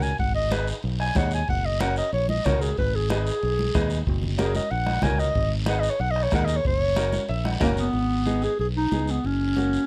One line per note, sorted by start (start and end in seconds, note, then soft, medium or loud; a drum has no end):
0.00 0.13 C#2 medium
0.00 0.18 G#5 medium
0.00 short guiro medium
0.18 0.71 G#1 medium
0.18 0.35 F#5 medium
0.18 bombo low medium
0.18 high conga soft
0.18 long guiro medium
0.35 0.54 D#5 medium
0.51 0.74 D#4 medium
0.51 0.74 G#4 medium
0.51 0.74 B4 medium
0.51 0.67 B4 medium
0.51 bombo rim medium
0.51 high conga medium
0.51 short guiro medium
0.67 short guiro medium
0.83 1.10 B1 medium
0.83 high conga soft
0.83 long guiro medium
1.00 1.18 G#5 medium
1.00 bombo rim medium
1.15 1.42 D#2 medium
1.15 1.38 D#4 medium
1.15 1.38 G#4 medium
1.15 1.39 C#5 medium
1.15 1.32 F#5 medium
1.15 bombo low medium
1.15 bombo rim medium
1.15 high conga medium
1.15 short guiro medium
1.31 1.49 G#5 medium
1.31 short guiro medium
1.48 2.00 F#1 loud
1.48 1.67 F#5 medium
1.48 bombo low medium
1.48 high conga soft
1.48 long guiro medium
1.65 1.82 D#5 medium
1.80 2.03 C#4 medium
1.80 2.03 F#4 medium
1.80 2.03 A#4 medium
1.80 1.96 F#5 medium
1.80 bombo rim medium
1.80 high conga medium
1.80 short guiro medium
1.96 2.12 D#5 medium
1.96 short guiro medium
2.13 2.39 A#1 medium
2.13 2.29 C#5 medium
2.13 high conga soft
2.13 long guiro medium
2.29 2.47 D#5 medium
2.29 high conga medium
2.44 2.72 C#2 medium
2.44 2.68 C#4 medium
2.44 2.68 F#4 medium
2.44 2.69 A#4 medium
2.44 2.63 C#5 medium
2.44 bombo low medium
2.44 bombo rim medium
2.44 high conga medium
2.44 low conga medium
2.44 short guiro medium
2.61 2.77 G#4 medium
2.61 short guiro medium
2.77 3.30 G#1 loud
2.77 2.97 B4 loud
2.77 bombo low medium
2.77 high conga soft
2.77 long guiro medium
2.95 3.10 G#4 medium
3.10 3.33 D#4 medium
3.10 3.33 G#4 medium
3.10 4.05 G#4 medium
3.10 3.33 B4 medium
3.10 bombo rim medium
3.10 high conga medium
3.10 short guiro medium
3.27 short guiro medium
3.43 3.69 B1 medium
3.43 high conga soft
3.43 long guiro medium
3.59 high conga medium
3.74 4.01 D#2 medium
3.74 3.97 D#4 medium
3.74 3.97 G#4 medium
3.74 3.97 B4 medium
3.74 bombo low medium
3.74 bombo rim medium
3.74 high conga loud
3.74 short guiro medium
3.90 short guiro medium
4.07 4.59 F#1 loud
4.07 bombo low medium
4.07 high conga soft
4.07 long guiro medium
4.23 low conga medium
4.38 4.61 C#4 medium
4.38 4.61 F#4 medium
4.38 4.55 G#4 medium
4.38 4.62 A#4 medium
4.38 bombo rim medium
4.38 high conga medium
4.38 short guiro medium
4.55 4.72 D#5 medium
4.55 high conga medium
4.55 short guiro medium
4.71 4.97 A#1 loud
4.71 5.04 F#5 loud
4.71 high conga soft
4.71 long guiro medium
4.86 bombo rim medium
4.86 high conga medium
5.02 5.30 C#2 medium
5.02 5.26 C#4 medium
5.02 5.26 F#4 medium
5.02 5.27 A#4 medium
5.02 5.21 G#5 medium
5.02 bombo low medium
5.02 bombo rim medium
5.02 high conga loud
5.02 low conga medium
5.02 short guiro medium
5.19 5.51 D#5 loud
5.19 short guiro medium
5.34 5.87 G#1 loud
5.34 bombo low medium
5.34 high conga soft
5.34 long guiro medium
5.66 5.91 D#4 medium
5.66 5.91 G#4 medium
5.66 5.91 B4 medium
5.66 5.81 F#5 medium
5.66 bombo rim medium
5.66 high conga medium
5.66 short guiro medium
5.80 5.91 D#5 medium
5.80 short guiro medium
5.90 6.02 C#5 medium
5.99 6.26 B1 medium
5.99 6.12 F#5 loud
5.99 high conga soft
5.99 long guiro medium
6.11 6.24 D#5 medium
6.16 bombo rim medium
6.23 6.33 C#5 medium
6.31 6.58 D#2 loud
6.31 6.55 D#4 medium
6.31 6.55 G#4 medium
6.31 6.56 A#4 medium
6.31 6.47 F#5 medium
6.31 bombo low medium
6.31 bombo rim medium
6.31 high conga medium
6.31 short guiro medium
6.45 6.58 D#5 medium
6.45 short guiro medium
6.56 6.66 C#5 medium
6.65 7.17 F#1 loud
6.65 7.29 C#5 loud
6.65 bombo low medium
6.65 high conga soft
6.65 long guiro medium
6.96 7.20 C#4 medium
6.96 7.20 F#4 medium
6.96 7.20 A#4 medium
6.96 bombo rim medium
6.96 high conga medium
6.96 short guiro medium
7.13 7.29 C#5 medium
7.13 high conga medium
7.13 short guiro medium
7.29 7.55 A#1 medium
7.29 7.45 E5 medium
7.29 high conga soft
7.29 long guiro medium
7.45 7.61 F#5 medium
7.45 bombo rim medium
7.45 high conga medium
7.60 7.88 F#1 loud
7.60 7.70 A#3 medium
7.60 7.84 C#4 medium
7.60 7.85 F#4 medium
7.60 7.84 A#4 loud
7.60 7.92 G#5 medium
7.60 bombo low medium
7.60 bombo rim loud
7.60 high conga medium
7.60 low conga medium
7.60 short guiro medium
7.77 8.45 B3 loud
7.77 short guiro medium
7.93 8.46 G#1 medium
7.93 high conga soft
7.93 long guiro medium
8.26 8.49 B3 medium
8.26 8.50 D#4 medium
8.26 8.49 G#4 medium
8.26 high conga medium
8.26 short guiro medium
8.42 8.59 G#4 medium
8.42 short guiro medium
8.59 8.85 B1 medium
8.59 8.67 G#4 medium
8.59 high conga soft
8.59 long guiro medium
8.77 9.12 D#4 medium
8.91 9.18 C#2 medium
8.91 9.15 B3 medium
8.91 9.15 D#4 medium
8.91 9.15 G#4 medium
8.91 high conga medium
8.91 short guiro medium
9.07 9.27 B3 medium
9.07 short guiro medium
9.24 9.76 F#1 medium
9.24 9.87 C#4 medium
9.24 high conga soft
9.24 long guiro medium
9.56 9.80 A#3 medium
9.56 9.79 C#4 medium
9.56 9.80 F#4 medium
9.56 high conga medium
9.56 short guiro medium
9.73 short guiro medium